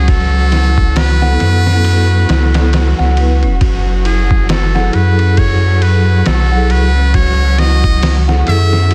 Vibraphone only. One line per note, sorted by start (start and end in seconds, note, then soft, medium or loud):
1.21 1.36 B3 medium
1.21 1.36 E4 medium
1.21 1.37 A4 medium
1.39 2.25 B3 loud
1.39 2.25 E4 medium
1.39 2.26 A4 loud
2.29 3.13 E4 medium
2.29 3.14 A4 loud
3.16 3.41 B3 medium
3.16 3.41 E4 medium
3.16 3.42 B4 medium
4.74 4.88 F#3 medium
4.74 4.89 E4 medium
4.74 4.90 G#4 medium
4.74 4.90 A4 medium
4.90 6.44 F#3 loud
4.90 6.45 E4 medium
4.95 6.46 G#4 medium
4.95 6.47 A4 loud
6.50 6.83 F#3 loud
6.50 6.83 E4 medium
6.50 6.84 G#4 medium
6.50 6.84 A4 loud
8.27 8.41 F#3 medium
8.27 8.42 E4 medium
8.27 8.43 G#4 medium
8.27 8.43 A4 medium
8.44 8.94 F#3 loud
8.44 8.94 E4 medium
8.48 8.94 G#4 medium
8.48 8.94 A4 loud